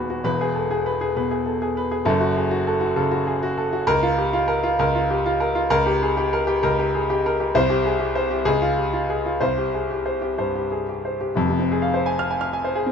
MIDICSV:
0, 0, Header, 1, 2, 480
1, 0, Start_track
1, 0, Tempo, 452830
1, 275, Time_signature, 4, 2, 24, 8
1, 4593, Tempo, 458716
1, 8433, Tempo, 465839
1, 9393, Tempo, 485437
1, 11793, Tempo, 460829
1, 13415, End_track
2, 0, Start_track
2, 0, Title_t, "Grand piano"
2, 0, Program_c, 0, 0
2, 0, Control_c, 0, 64, 127
2, 0, Note_on_c, 0, 27, 82
2, 0, Note_on_c, 0, 39, 76
2, 0, Note_on_c, 0, 59, 69
2, 0, Note_on_c, 0, 66, 79
2, 0, Note_on_c, 0, 68, 61
2, 0, Note_on_c, 0, 71, 71
2, 105, Note_off_c, 0, 66, 0
2, 105, Note_on_c, 0, 66, 78
2, 206, Note_off_c, 0, 71, 0
2, 242, Note_off_c, 0, 39, 0
2, 254, Note_on_c, 0, 28, 89
2, 260, Note_on_c, 0, 71, 99
2, 266, Note_on_c, 0, 40, 86
2, 270, Note_off_c, 0, 66, 0
2, 292, Control_c, 0, 64, 0
2, 294, Note_off_c, 0, 68, 0
2, 300, Note_off_c, 0, 27, 0
2, 303, Note_off_c, 0, 59, 0
2, 434, Note_on_c, 0, 68, 83
2, 490, Control_c, 0, 64, 127
2, 525, Note_off_c, 0, 71, 0
2, 581, Note_on_c, 0, 69, 65
2, 692, Note_off_c, 0, 68, 0
2, 749, Note_off_c, 0, 69, 0
2, 749, Note_on_c, 0, 68, 81
2, 912, Note_on_c, 0, 71, 86
2, 1010, Note_off_c, 0, 68, 0
2, 1072, Note_on_c, 0, 68, 82
2, 1172, Note_off_c, 0, 71, 0
2, 1199, Note_off_c, 0, 28, 0
2, 1206, Note_off_c, 0, 40, 0
2, 1234, Note_on_c, 0, 47, 75
2, 1237, Note_on_c, 0, 71, 78
2, 1333, Note_off_c, 0, 68, 0
2, 1391, Note_on_c, 0, 68, 76
2, 1430, Note_off_c, 0, 47, 0
2, 1495, Note_off_c, 0, 71, 0
2, 1546, Note_on_c, 0, 69, 62
2, 1653, Note_off_c, 0, 68, 0
2, 1714, Note_off_c, 0, 69, 0
2, 1716, Note_on_c, 0, 68, 79
2, 1877, Note_on_c, 0, 71, 79
2, 1975, Note_off_c, 0, 68, 0
2, 2030, Note_on_c, 0, 68, 76
2, 2135, Note_off_c, 0, 71, 0
2, 2175, Note_on_c, 0, 30, 97
2, 2178, Note_on_c, 0, 69, 100
2, 2180, Note_on_c, 0, 42, 102
2, 2195, Note_off_c, 0, 68, 0
2, 2219, Control_c, 0, 64, 0
2, 2339, Note_on_c, 0, 66, 84
2, 2408, Control_c, 0, 64, 127
2, 2445, Note_off_c, 0, 69, 0
2, 2506, Note_on_c, 0, 68, 68
2, 2604, Note_off_c, 0, 66, 0
2, 2661, Note_on_c, 0, 66, 83
2, 2672, Note_off_c, 0, 68, 0
2, 2830, Note_on_c, 0, 69, 88
2, 2925, Note_off_c, 0, 66, 0
2, 2975, Note_on_c, 0, 66, 87
2, 3088, Note_off_c, 0, 69, 0
2, 3114, Note_off_c, 0, 30, 0
2, 3116, Note_off_c, 0, 42, 0
2, 3139, Note_on_c, 0, 49, 80
2, 3141, Note_on_c, 0, 69, 89
2, 3240, Note_off_c, 0, 66, 0
2, 3302, Note_on_c, 0, 66, 85
2, 3337, Note_off_c, 0, 49, 0
2, 3402, Note_off_c, 0, 69, 0
2, 3467, Note_on_c, 0, 68, 75
2, 3562, Note_off_c, 0, 66, 0
2, 3629, Note_off_c, 0, 68, 0
2, 3634, Note_on_c, 0, 66, 90
2, 3789, Note_on_c, 0, 69, 85
2, 3889, Note_off_c, 0, 66, 0
2, 3952, Note_on_c, 0, 66, 85
2, 4046, Note_off_c, 0, 69, 0
2, 4102, Note_on_c, 0, 37, 107
2, 4102, Note_on_c, 0, 70, 121
2, 4111, Note_off_c, 0, 66, 0
2, 4132, Control_c, 0, 64, 0
2, 4269, Note_on_c, 0, 65, 91
2, 4314, Control_c, 0, 64, 127
2, 4363, Note_off_c, 0, 70, 0
2, 4430, Note_on_c, 0, 67, 78
2, 4527, Note_off_c, 0, 65, 0
2, 4592, Note_off_c, 0, 67, 0
2, 4593, Note_on_c, 0, 65, 96
2, 4745, Note_on_c, 0, 70, 93
2, 4846, Note_off_c, 0, 65, 0
2, 4909, Note_on_c, 0, 65, 96
2, 5002, Note_off_c, 0, 70, 0
2, 5036, Note_off_c, 0, 37, 0
2, 5074, Note_on_c, 0, 37, 100
2, 5075, Note_on_c, 0, 70, 99
2, 5165, Note_off_c, 0, 65, 0
2, 5241, Note_on_c, 0, 65, 92
2, 5329, Note_off_c, 0, 70, 0
2, 5400, Note_on_c, 0, 67, 78
2, 5494, Note_off_c, 0, 65, 0
2, 5558, Note_off_c, 0, 67, 0
2, 5560, Note_on_c, 0, 65, 90
2, 5713, Note_on_c, 0, 70, 92
2, 5814, Note_off_c, 0, 65, 0
2, 5869, Note_on_c, 0, 65, 90
2, 5970, Note_off_c, 0, 70, 0
2, 6008, Note_off_c, 0, 37, 0
2, 6026, Note_on_c, 0, 37, 108
2, 6027, Note_on_c, 0, 70, 121
2, 6032, Note_off_c, 0, 65, 0
2, 6055, Control_c, 0, 64, 0
2, 6194, Note_on_c, 0, 67, 94
2, 6219, Control_c, 0, 64, 127
2, 6288, Note_off_c, 0, 70, 0
2, 6364, Note_on_c, 0, 68, 81
2, 6451, Note_off_c, 0, 67, 0
2, 6515, Note_on_c, 0, 67, 95
2, 6520, Note_off_c, 0, 68, 0
2, 6683, Note_on_c, 0, 70, 98
2, 6770, Note_off_c, 0, 67, 0
2, 6830, Note_on_c, 0, 67, 99
2, 6933, Note_off_c, 0, 70, 0
2, 6960, Note_off_c, 0, 37, 0
2, 6997, Note_on_c, 0, 37, 100
2, 6997, Note_on_c, 0, 70, 99
2, 7086, Note_off_c, 0, 67, 0
2, 7165, Note_on_c, 0, 67, 93
2, 7250, Note_off_c, 0, 70, 0
2, 7330, Note_on_c, 0, 68, 75
2, 7414, Note_off_c, 0, 67, 0
2, 7480, Note_off_c, 0, 68, 0
2, 7487, Note_on_c, 0, 67, 91
2, 7656, Note_on_c, 0, 70, 90
2, 7735, Note_off_c, 0, 67, 0
2, 7805, Note_on_c, 0, 67, 84
2, 7898, Note_off_c, 0, 70, 0
2, 7923, Note_off_c, 0, 37, 0
2, 7957, Note_off_c, 0, 67, 0
2, 7959, Note_on_c, 0, 36, 116
2, 7959, Note_on_c, 0, 72, 109
2, 7972, Control_c, 0, 64, 0
2, 8115, Note_on_c, 0, 67, 96
2, 8165, Control_c, 0, 64, 127
2, 8210, Note_off_c, 0, 72, 0
2, 8279, Note_on_c, 0, 68, 75
2, 8369, Note_off_c, 0, 67, 0
2, 8425, Note_on_c, 0, 67, 86
2, 8436, Note_off_c, 0, 68, 0
2, 8590, Note_on_c, 0, 72, 89
2, 8683, Note_off_c, 0, 67, 0
2, 8747, Note_on_c, 0, 67, 87
2, 8846, Note_off_c, 0, 72, 0
2, 8886, Note_off_c, 0, 36, 0
2, 8896, Note_on_c, 0, 37, 104
2, 8897, Note_on_c, 0, 68, 108
2, 8908, Note_off_c, 0, 67, 0
2, 8931, Control_c, 0, 64, 0
2, 9068, Note_on_c, 0, 65, 87
2, 9112, Control_c, 0, 64, 127
2, 9160, Note_off_c, 0, 68, 0
2, 9230, Note_on_c, 0, 67, 62
2, 9326, Note_off_c, 0, 65, 0
2, 9390, Note_on_c, 0, 65, 79
2, 9392, Note_off_c, 0, 67, 0
2, 9555, Note_on_c, 0, 68, 74
2, 9642, Note_off_c, 0, 65, 0
2, 9712, Note_on_c, 0, 65, 72
2, 9806, Note_off_c, 0, 68, 0
2, 9833, Note_off_c, 0, 37, 0
2, 9859, Note_on_c, 0, 72, 95
2, 9865, Note_on_c, 0, 36, 89
2, 9871, Note_off_c, 0, 65, 0
2, 9888, Control_c, 0, 64, 0
2, 10030, Note_on_c, 0, 67, 76
2, 10067, Control_c, 0, 64, 127
2, 10122, Note_off_c, 0, 72, 0
2, 10193, Note_on_c, 0, 68, 61
2, 10287, Note_off_c, 0, 67, 0
2, 10352, Note_off_c, 0, 68, 0
2, 10354, Note_on_c, 0, 67, 73
2, 10502, Note_on_c, 0, 72, 77
2, 10607, Note_off_c, 0, 67, 0
2, 10661, Note_on_c, 0, 67, 74
2, 10761, Note_off_c, 0, 72, 0
2, 10799, Note_off_c, 0, 36, 0
2, 10826, Note_on_c, 0, 72, 72
2, 10827, Note_on_c, 0, 43, 68
2, 10922, Note_off_c, 0, 67, 0
2, 10995, Note_on_c, 0, 67, 71
2, 11022, Note_off_c, 0, 43, 0
2, 11087, Note_off_c, 0, 72, 0
2, 11154, Note_on_c, 0, 68, 62
2, 11252, Note_off_c, 0, 67, 0
2, 11316, Note_off_c, 0, 68, 0
2, 11323, Note_on_c, 0, 67, 67
2, 11484, Note_on_c, 0, 72, 63
2, 11577, Note_off_c, 0, 67, 0
2, 11640, Note_on_c, 0, 67, 71
2, 11734, Note_off_c, 0, 72, 0
2, 11785, Note_on_c, 0, 29, 85
2, 11794, Note_off_c, 0, 67, 0
2, 11798, Note_on_c, 0, 41, 99
2, 11813, Control_c, 0, 64, 0
2, 11922, Note_on_c, 0, 48, 74
2, 11979, Control_c, 0, 64, 127
2, 12033, Note_on_c, 0, 60, 67
2, 12112, Note_off_c, 0, 48, 0
2, 12163, Note_on_c, 0, 68, 77
2, 12229, Note_off_c, 0, 60, 0
2, 12270, Note_on_c, 0, 77, 79
2, 12354, Note_off_c, 0, 68, 0
2, 12395, Note_on_c, 0, 72, 83
2, 12466, Note_off_c, 0, 77, 0
2, 12521, Note_on_c, 0, 80, 86
2, 12588, Note_off_c, 0, 72, 0
2, 12657, Note_on_c, 0, 89, 98
2, 12710, Note_off_c, 0, 80, 0
2, 12775, Note_on_c, 0, 80, 82
2, 12838, Note_off_c, 0, 89, 0
2, 12884, Note_on_c, 0, 89, 84
2, 12956, Note_off_c, 0, 80, 0
2, 13013, Note_on_c, 0, 80, 77
2, 13071, Note_off_c, 0, 89, 0
2, 13129, Note_on_c, 0, 72, 77
2, 13195, Note_off_c, 0, 80, 0
2, 13244, Note_on_c, 0, 68, 83
2, 13313, Note_off_c, 0, 72, 0
2, 13357, Note_on_c, 0, 60, 71
2, 13415, Note_off_c, 0, 29, 0
2, 13415, Note_off_c, 0, 41, 0
2, 13415, Note_off_c, 0, 60, 0
2, 13415, Note_off_c, 0, 68, 0
2, 13415, End_track
0, 0, End_of_file